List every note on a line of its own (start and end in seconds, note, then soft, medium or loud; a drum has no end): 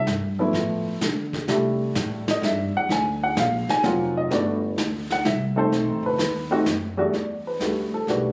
0.07 0.52 G2 medium
0.07 brush sweep soft
0.07 snare soft
0.39 0.98 F3 medium
0.39 0.98 A3 medium
0.39 0.99 B3 medium
0.39 0.99 E4 medium
0.53 0.83 A2 medium
0.53 snare soft
0.87 muted upright bass stroke soft
1.01 1.47 D3 medium
1.01 snare medium
1.01 hi-hat pedal medium
1.33 kick soft
1.33 snare soft
1.48 1.94 C3 medium
1.48 2.81 G3 medium
1.48 2.81 A3 medium
1.48 2.82 D4 medium
1.48 2.82 E4 medium
1.48 brush sweep soft
1.48 snare soft
1.95 2.41 A2 medium
1.95 snare medium
1.95 hi-hat pedal medium
2.28 2.44 D#5 medium
2.28 snare medium
2.42 2.72 G2 medium
2.42 2.75 E5 medium
2.42 snare soft
2.75 2.90 F#5 medium
2.75 muted upright bass stroke soft
2.89 3.35 D2 medium
2.89 3.22 G#5 medium
2.89 brush sweep soft
2.89 snare soft
3.23 3.37 F#5 medium
3.37 3.67 A#1 medium
3.37 3.69 F5 medium
3.37 snare medium
3.37 hi-hat pedal medium
3.69 3.84 G#5 loud
3.69 snare soft
3.83 4.29 F1 medium
3.83 4.31 F#3 medium
3.83 4.31 A#3 medium
3.83 4.31 C4 medium
3.83 4.32 F4 medium
3.83 4.16 F#5 medium
3.83 snare soft
4.17 4.31 D#5 medium
4.31 4.76 G1 medium
4.31 4.60 A3 medium
4.31 4.60 B3 medium
4.31 4.60 D4 medium
4.31 4.60 F#4 medium
4.31 4.52 D5 medium
4.31 brush sweep soft
4.31 snare soft
4.78 5.24 D2 medium
4.78 snare medium
4.78 hi-hat pedal medium
5.10 5.26 F#5 medium
5.10 snare soft
5.25 5.71 C2 medium
5.25 5.57 E5 medium
5.25 snare soft
5.56 6.16 A3 medium
5.56 6.16 C4 medium
5.56 6.16 D#4 medium
5.56 6.17 A4 medium
5.56 6.02 C5 medium
5.72 5.88 B1 medium
5.72 brush sweep soft
5.72 snare soft
5.88 6.02 A1 medium
6.03 6.18 F#1 medium
6.03 6.63 B4 medium
6.18 6.65 D#2 medium
6.18 snare medium
6.18 hi-hat pedal medium
6.51 6.65 A3 medium
6.51 6.65 C4 medium
6.51 6.65 D#4 medium
6.51 6.65 F#4 medium
6.66 7.12 F#2 medium
6.66 snare medium
6.66 hi-hat pedal medium
6.97 7.12 E2 medium
6.97 7.12 G3 medium
6.97 7.12 A3 medium
6.97 7.12 D4 medium
6.97 7.12 F#4 medium
7.13 7.59 E2 medium
7.13 7.46 D5 soft
7.13 brush sweep soft
7.13 snare soft
7.47 7.91 B4 medium
7.60 7.90 D2 medium
7.60 7.90 G3 soft
7.60 7.90 A3 soft
7.60 7.90 D4 soft
7.60 7.91 F#4 soft
7.60 snare soft
7.60 hi-hat pedal soft
7.92 8.08 A4 medium
7.92 muted upright bass stroke soft
8.06 8.32 B1 medium
8.06 8.32 G3 medium
8.06 8.32 A3 soft
8.06 8.32 D4 soft
8.06 8.32 F#4 medium
8.06 8.10 A#4 soft
8.06 snare soft
8.10 8.32 B4 soft